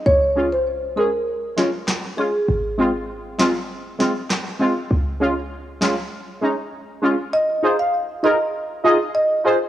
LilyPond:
<<
  \new Staff \with { instrumentName = "Marimba" } { \time 4/4 \key aes \major \tempo 4 = 99 des''8 r16 c''16 r8 bes'16 r4. r16 aes'16 r16 | r1 | r1 | ees''8 r16 f''16 r8 ees''16 r4 r16 ees''8. r16 | }
  \new Staff \with { instrumentName = "Synth stab" } { \time 4/4 \key aes \major r8 <aes des' f'>8 r8 <aes des' aes'>8 r8 <aes des' f'>8 r8 <aes des' f'>8 | r8 <aes c' f'>8 r8 <aes c' f'>8 r8 <aes c' f'>8 r8 <aes c' f'>8 | r8 <aes des' f'>8 r8 <aes des' f'>8 r8 <aes des' ees'>8 r8 <aes des' f'>8 | r8 <ees' f' aes' c''>8 r8 <ees' f' aes' bes'>8 r8 <ees' f' aes' ees''>8 r8 <ees' f' aes' c''>8 | }
  \new Staff \with { instrumentName = "808-style bass" } { \clef bass \time 4/4 \key aes \major des,1 | aes,,1 | des,2 r2 | r1 | }
  \new DrumStaff \with { instrumentName = "Drums" } \drummode { \time 4/4 r4 r4 r8 sn8 <hc ss sn>4 | r4 r8 <hc sn>8 r8 sn8 <hc ss sn>4 | r4 r8 <hc sn>8 r4 r4 | r4 r4 r4 r4 | }
>>